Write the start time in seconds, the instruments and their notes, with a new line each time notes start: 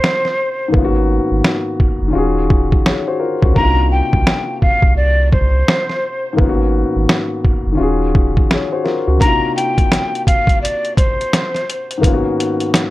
Already playing: grand piano C3 A#3 D4 D#4 F4, flute C5
0.04 snare
0.25 snare
0.68 grand piano G#2 D#3 A#3
0.74 sub bass G#1, grand piano B3 C#4, kick
0.78 grand piano F4
0.85 grand piano F#4
1.31 sub bass G#1
1.44 snare
1.80 kick
2.02 sub bass F#1
2.08 grand piano D#3 C#4
2.13 sub bass D#1, grand piano F4 F#4
2.18 grand piano G#4
2.50 kick
2.72 kick
2.86 grand piano G#4 C#5, snare
3.08 grand piano F#4 C5
3.19 grand piano F4 A#4
3.42 sub bass C#2, grand piano C#4 F#4, kick
3.53 sub bass C2, grand piano C3 A#3, flute A#5, kick
3.58 grand piano D4 D#4
3.62 grand piano F4
3.91 flute G5
4.13 sub bass C2, kick
4.27 snare
4.62 flute F5, kick
4.82 sub bass C2, kick
4.97 flute D5
5.33 flute C5, kick
5.68 snare
5.89 snare
6.33 grand piano G#2 D#3 A#3
6.38 sub bass G#1, grand piano B3 C#4, kick
6.43 grand piano F4
6.49 grand piano F#4
6.96 sub bass G#1
7.09 snare
7.45 kick
7.67 sub bass F#1
7.72 grand piano D#3 C#4
7.77 sub bass D#1, grand piano F4 F#4
7.82 grand piano G#4
8.15 kick
8.37 kick
8.51 grand piano G#4 C#5, snare
8.72 grand piano F#4 C5
8.84 grand piano F4 A#4, snare
9.07 sub bass C#2, grand piano C#4 F#4
9.17 grand piano C3 A#3, flute A#5, kick
9.22 grand piano D4 D#4, closed hi-hat
9.27 grand piano F4
9.56 flute G5, closed hi-hat
9.78 kick, closed hi-hat
9.92 snare, closed hi-hat
10.15 closed hi-hat
10.27 flute F5, kick, closed hi-hat
10.47 kick, closed hi-hat
10.62 flute D5, closed hi-hat
10.85 closed hi-hat
10.96 flute C5, kick, closed hi-hat
11.21 closed hi-hat
11.33 snare, closed hi-hat
11.55 snare, closed hi-hat
11.70 closed hi-hat
11.91 closed hi-hat
11.98 grand piano G#2 D#3 A#3
12.03 grand piano B3 C#4, kick, closed hi-hat
12.07 grand piano F4
12.14 grand piano F#4
12.40 closed hi-hat
12.60 closed hi-hat
12.74 snare, closed hi-hat